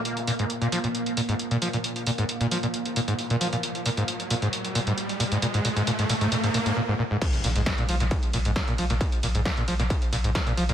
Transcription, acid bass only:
0.28 A#2
0.39 G#2
0.61 A#2
0.72 F3
0.84 A#2
1.17 A#2
1.29 G#2
1.51 A#2
1.62 F3
1.74 A#2
2.07 A#2
2.19 G#2
2.41 A#2
2.51 F3
2.63 A#2
2.96 A#2
3.08 G#2
3.30 A#2
3.41 F3
3.53 A#2
3.86 A#2
3.97 G#2
4.31 A#2
4.42 G#2
4.75 A#2
4.87 G#2
5.20 A#2
5.32 G#2
5.42 A#2
5.54 G#2
5.65 A#2
5.76 G#2
5.87 A#2
5.99 G#2
6.10 A#2
6.21 G#2
6.32 A#2
6.44 G#2
6.54 A#2
6.66 G#2
6.77 A#2
6.88 G#2
6.99 A#2
7.11 G#2
7.44 A#2
7.56 G#2
7.78 A#2
7.89 F3
8.01 A#2
8.34 A#2
8.45 G#2
8.68 A#2
8.79 F3
8.90 A#2
9.23 A#2
9.35 G#2
9.57 A#2
9.68 F3
9.80 A#2
10.13 A#2
10.24 G#2
10.47 A#2
10.57 F3
10.69 A#2

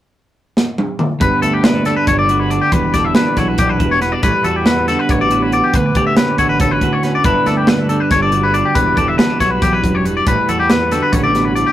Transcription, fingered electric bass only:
1.21 G1
1.43 D2
2.07 G1
2.72 E1
2.94 E1
3.37 B1
3.58 B1
3.80 E1
4.23 A1
4.44 E2
5.09 A1
5.74 D2
5.95 D2
6.38 A1
6.60 A1
6.81 D2
7.25 G1
7.46 D2
8.10 G1
8.75 E1
8.97 E1
9.40 B1
9.62 B1
9.84 E1
10.27 A1
10.49 E2
11.13 A1

